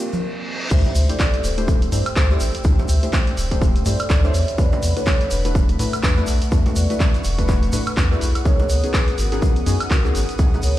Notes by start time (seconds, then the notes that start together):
Already playing: A#3 C4 D4 D5 F5, reverse cymbal
0.00 D4 F4 G4 A#4
0.13 high conga, shaker
0.71 D2 A3 D4 E4 G4 C5 E5 G5 E6, kick, crash, sub drop, shaker
0.84 low conga, shaker
0.95 D2, open hi-hat, shaker
1.09 A3 D4 E4 G4 A4 C5 D5, closed hi-hat, shaker
1.19 kick, clap, shaker
1.33 closed hi-hat, shaker
1.44 D1 A4 C5, open hi-hat, shaker
1.58 A3 D4 E4 G4 C5, closed hi-hat, shaker
1.68 kick, shaker
1.82 closed hi-hat, shaker
1.92 G2 A3 D4 E4 G4 C5, open hi-hat, shaker
2.06 closed hi-hat, high woodblock, shaker
2.16 D2 A4 C5, kick, clap, shaker
2.30 A3 D4 E4 G4 C5, shaker
2.40 A1, open hi-hat, shaker
2.55 closed hi-hat, shaker
2.64 D2 A3 D4 E4 G4 C5, kick, shaker
2.79 low conga, shaker
2.88 D2 C5 E5, open hi-hat, shaker
3.03 A3 D4 E4 G4 C5, closed hi-hat, shaker
3.13 kick, clap, shaker
3.27 closed hi-hat, shaker
3.37 D1, open hi-hat, shaker
3.51 A3 D4 E4 G4 C5, kick, closed hi-hat, shaker
3.62 kick, shaker
3.76 closed hi-hat, shaker
3.86 G2 A3 D4 E4 G4 A4 C5 D5, open hi-hat, shaker
3.99 closed hi-hat, high woodblock, shaker
4.10 D2, kick, clap, shaker
4.24 A3 D4 E4 G4 C5 C#5 E5, shaker
4.34 E2 A3 F#5 B5, open hi-hat, shaker
4.48 closed hi-hat, shaker
4.58 E2 A3 D4 E4 F#4 B4 D5, kick, shaker
4.72 low conga, shaker
4.83 E2, open hi-hat, shaker
4.96 A3 D4 E4 F#4 A4 B4 C#5, closed hi-hat, shaker
5.06 kick, clap, shaker
5.21 closed hi-hat, shaker
5.31 E1 D4 B4, open hi-hat, shaker
5.45 A3 D4 E4 F#4 B4, closed hi-hat, shaker
5.55 kick, shaker
5.69 closed hi-hat, shaker
5.79 A2 A3 D4 E4 F#4 B4, open hi-hat, shaker
5.93 closed hi-hat, high woodblock, shaker
6.03 E2 D4 B4, kick, clap, shaker
6.17 A3 D4 E4 F#4 B4, shaker
6.27 B1 C#6, open hi-hat, shaker
6.42 closed hi-hat, shaker
6.52 E2 A3 D4 E4 F#4 B4, kick, shaker
6.66 closed hi-hat, low conga, shaker
6.76 E2 B4 D5, open hi-hat, shaker
6.90 A3 D4 E4 F#4 B4, closed hi-hat, shaker
7.00 kick, clap, shaker
7.14 closed hi-hat, shaker
7.24 E1, open hi-hat, shaker
7.38 A3 D4 E4 F#4 B4, kick, closed hi-hat, shaker
7.48 kick, clap, shaker
7.63 closed hi-hat, shaker
7.73 A2 A3 D4 E4 F#4 B4, open hi-hat, shaker
7.86 closed hi-hat, high woodblock, shaker
7.97 E2, kick, clap, shaker
8.11 A3 D4 E4 F#4 G#4 B4, shaker
8.21 B1, open hi-hat, shaker
8.35 closed hi-hat, high woodblock, shaker
8.45 C#2 B3 C#4 D#4 F#4 G#4 A#4 C#5 D#6, kick, shaker
8.59 low conga, shaker
8.69 C#2, open hi-hat, shaker
8.83 B3 C#4 D#4 F#4 G#4 B4, closed hi-hat, shaker
8.94 kick, clap, shaker
9.08 closed hi-hat, shaker
9.18 G#1 F#4 A#4, open hi-hat, shaker
9.32 B3 C#4 D#4 F#4 G#4, closed hi-hat, shaker
9.42 kick, shaker
9.56 closed hi-hat, shaker
9.66 F#2 B3 C#4 D#4 F#4 G#4, open hi-hat, shaker
9.80 closed hi-hat, high woodblock, shaker
9.91 C#2 F#4 A#4, kick, clap, shaker
10.04 B3 C#4 D#4 F#4 G#4, shaker
10.15 G#1, open hi-hat, shaker
10.29 closed hi-hat, shaker
10.39 C#2 B3 C#4 D#4 F#4 G#4, kick, shaker
10.54 low conga, shaker
10.62 C#2 A#4 C#5, open hi-hat, shaker